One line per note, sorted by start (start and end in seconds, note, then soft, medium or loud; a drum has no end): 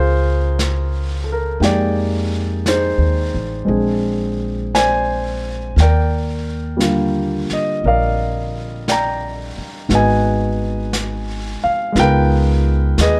0.00 1.57 C#2 medium
0.00 1.59 G#3 medium
0.00 1.60 A#3 soft
0.00 1.61 C#4 soft
0.00 1.60 F4 medium
0.00 1.60 G#4 medium
0.00 1.32 A#4 medium
0.00 0.56 C5 medium
0.59 brush sweep soft
0.59 snare soft
0.59 hi-hat pedal soft
1.24 1.30 A4 soft
1.32 1.60 A#4 medium
1.60 2.94 F2 medium
1.60 3.63 G#3 soft
1.60 3.68 A#3 soft
1.60 2.67 D#4 soft
1.60 3.65 G4 medium
1.60 2.67 G#4 medium
1.60 3.68 G5 medium
1.60 brush sweep soft
1.60 snare soft
1.65 2.69 D5 medium
2.66 3.66 D#4 soft
2.66 3.68 G#4 soft
2.66 4.70 C5 medium
2.66 brush sweep soft
2.66 snare soft
2.66 hi-hat pedal medium
2.98 3.30 D#2 medium
3.34 3.66 A1 medium
3.65 5.72 A#1 medium
3.65 5.75 G#3 soft
3.65 5.75 C4 soft
3.65 5.76 D4 soft
3.69 5.77 G#4 medium
3.69 brush sweep soft
4.75 5.73 C5 medium
4.75 5.74 D5 medium
4.75 5.73 G#5 medium
4.75 brush sweep soft
4.75 snare soft
4.75 hi-hat pedal soft
5.76 7.46 D#2 medium
5.76 6.78 G5 medium
5.76 brush sweep soft
5.76 snare soft
5.81 7.82 A#4 medium
5.81 7.82 D5 medium
6.77 9.89 D3 soft
6.77 9.88 G3 soft
6.77 9.89 A#3 soft
6.77 brush sweep soft
6.77 snare soft
6.77 hi-hat pedal medium
6.81 9.90 F4 soft
7.50 7.86 D#5 medium
7.50 muted upright bass stroke soft
7.50 snare soft
7.84 9.53 A#1 medium
7.84 9.87 A#4 medium
7.84 8.88 D5 medium
7.84 8.92 F5 medium
7.84 brush sweep soft
8.88 9.87 D5 medium
8.88 9.87 G5 medium
8.88 9.95 A#5 medium
8.88 brush sweep soft
8.88 snare soft
8.88 hi-hat pedal soft
9.58 muted upright bass stroke soft
9.89 11.58 G#1 medium
9.89 11.91 G#3 soft
9.89 11.94 B3 soft
9.89 11.95 D#4 soft
9.89 11.95 F#4 soft
9.89 brush sweep soft
9.89 snare soft
9.94 11.93 B4 medium
9.94 11.93 D#5 medium
9.94 10.91 G#5 medium
10.93 brush sweep soft
10.93 snare soft
10.93 hi-hat pedal soft
11.64 11.97 F5 medium
11.64 muted upright bass stroke soft
11.92 12.94 C#2 medium
11.92 13.20 G#3 medium
11.92 13.20 B3 soft
11.92 13.20 D#4 soft
11.92 brush sweep soft
11.92 snare soft
11.97 13.20 F4 medium
11.97 13.20 A#4 medium
11.97 13.00 B4 medium
11.97 13.03 G5 loud
12.98 13.20 D#2 medium
12.98 13.20 G#4 medium
12.98 13.20 B4 medium
12.98 13.20 D#5 medium
12.98 brush sweep soft
12.98 snare soft
12.98 hi-hat pedal soft